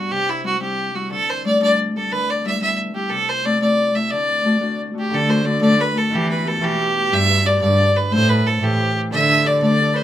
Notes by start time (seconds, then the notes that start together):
Already playing: G2 G3 A3 B3 D4 E4 F#4 G4
0.11 C3 G4
0.29 E4
0.43 G3 C4 E4 F#4
0.59 G3 C4 E4 G4
0.94 G3 C4 E4 F#4
1.10 D3 A4
1.29 C5
1.45 G3 A3 D4 D5
1.60 G3 A3 D4 D5
1.95 G3 A3 D4 A4
2.11 D3 B4
2.30 D5
2.45 G3 B3 E4 E5
2.61 G3 B3 E4 E5
2.94 G3 B3 E4 G4
3.10 C3 A4
3.29 C5
3.45 A3 C4 E4 D5
3.61 A3 C4 E4 D5
3.95 A3 C4 E4 E5
4.11 D3 D5
4.45 A3 D4 F#4
4.60 A3 D4 F#4
4.93 A3 D4 F#4
4.99 G4
5.10 D3 A4
5.28 A3 D4 F#4 C5
5.45 A3 D4 F#4 D5
5.61 D3 A3 D5
5.78 A3 D4 F#4 B4
5.94 A3 D4 F#4 A4
6.11 E3
6.15 G4
6.30 B3 E4 G4 B4
6.44 B3 E4 G4 A4
6.61 B2 E3 G4
6.78 B3 E4 G4
6.94 B3 E4
7.11 G2 G3 E5
7.28 D4 G4 B4
7.45 D4 G4 B4 D5
7.61 G2 D3 D5
7.79 D4 G4 B4
7.95 D4 G4 B4
8.11 A2 A3 C5
8.29 E4 A4 B4 C5
8.45 E4 A4 C5
8.62 A2 E3 G4
8.79 E4 A4 C5
8.95 E4 A4 C5
9.11 D3 E5
9.29 D4 G4 A4
9.44 D4 G4 A4 D5
9.62 D3 A3 D5
9.80 D4 G4 A4
9.93 D4 G4 B4 C5
9.97 A4